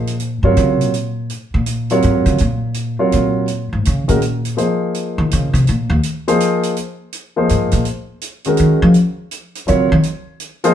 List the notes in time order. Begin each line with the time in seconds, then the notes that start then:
Already playing: A#2 F3 A#3 D#4 G#4 C5
0.07 closed hi-hat
0.20 closed hi-hat
0.43 G#2 C3 F#3 F4 A#4 C#5
0.57 C#3, closed hi-hat
0.80 A#2, closed hi-hat
0.94 closed hi-hat
1.30 closed hi-hat
1.54 A#2
1.66 closed hi-hat
1.90 C3 F#3 F4 A#4 C#5, closed hi-hat
2.02 G#2, closed hi-hat
2.26 C#3, closed hi-hat
2.38 A#2, closed hi-hat
2.74 closed hi-hat
2.99 C3 F#3 F4 A#4 C#5
3.12 A#2, closed hi-hat
3.48 closed hi-hat
3.73 G#2
3.85 C#3, closed hi-hat
4.08 A#2 D#3 G#3 C#4 F#4 A#4, closed hi-hat
4.22 closed hi-hat
4.45 closed hi-hat
4.57 F3 A#3 D#4 G#4 C5, closed hi-hat
4.94 closed hi-hat
5.18 D#3
5.31 C#3, closed hi-hat
5.53 C3, closed hi-hat
5.67 A#2, closed hi-hat
5.90 D#2
6.03 closed hi-hat
6.28 F3 A#3 D#4 G#4 C5, closed hi-hat
6.40 closed hi-hat
6.63 closed hi-hat
6.76 closed hi-hat
7.12 closed hi-hat
7.36 F3 A#3 D#4 G#4 C5
7.49 G#2, closed hi-hat
7.71 A#2, closed hi-hat
7.85 closed hi-hat
8.21 closed hi-hat
8.44 D#3 G#3 C#4 F#4 A#4, closed hi-hat
8.57 D#3, closed hi-hat
8.82 F3
8.94 closed hi-hat
9.31 closed hi-hat
9.55 closed hi-hat
9.67 C#3 F#3 C4 F4 A#4 C#5, closed hi-hat
9.92 D#3
10.03 closed hi-hat
10.40 closed hi-hat
10.64 F3 A#3 D#4 G#4 C5, closed hi-hat